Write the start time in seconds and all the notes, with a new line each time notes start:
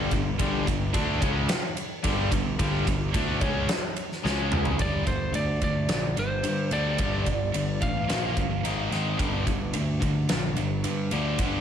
Already playing: G2 D3 G3
0.11 G1 G2 D3, kick, ride
0.39 G1 G2 D3 G3, kick, ride
0.66 G1 G2 D3, kick, ride
0.93 D2 D3 A3 D4, kick, ride
1.20 C#2 C#3 G#3 C#4, kick, ride
1.49 snare, ride
1.77 ride
2.03 G1 G2 D3 G3, kick, ride
2.31 G1 G2 D3, kick, ride
2.58 G1 G2 D3 G3, kick, ride
2.86 G1 G2 D3, kick, ride
3.14 D2 D3 A3 D4, kick, ride
3.40 C#2 C#3 G#3 C#4, kick, ride
3.69 snare, ride
3.96 ride
4.12 snare
4.23 C#2 C#3 G#3 C#4, snare
4.52 mid tom
4.65 floor tom
4.78 G1 G2 D3 G3 D5, kick, ride
5.05 G1 G2 D3 C5, kick, ride
5.33 D2 G2 D3 D5, ride
5.62 D2 G2 D3 D5, kick, ride
5.88 A#1 G2 D3, snare, ride
6.17 G1 G2 D3 C5, ride
6.43 G2 D3, ride
6.71 D2 G2 D3 G3 D5, ride
6.98 G1 G2 D3 G3, kick, ride
7.26 G2 D3, kick, ride
7.54 G1 G2 D3, ride
7.81 A1 G2 D3 F5, kick, ride
8.09 A#1 A#2 F3 A#3, snare, ride
8.36 G1 A#2 F3, kick, ride
8.64 G#1 G#2 D#3 G#3, ride
8.91 G#1 G#2 D#3 G#3, snare, ride
9.19 G1 G2 D3 G3, kick, ride
9.45 G1 G2 D3, kick, ride
9.73 D2 G2 D3, ride
10.00 D2 G2 D3, kick, ride
10.29 A#1 G2 D3, snare, ride
10.56 G1 G2 D3, ride
10.84 G2 D3, ride
11.11 D2 G2 D3 G3, ride
11.38 G1 G2 D3 G3, kick, ride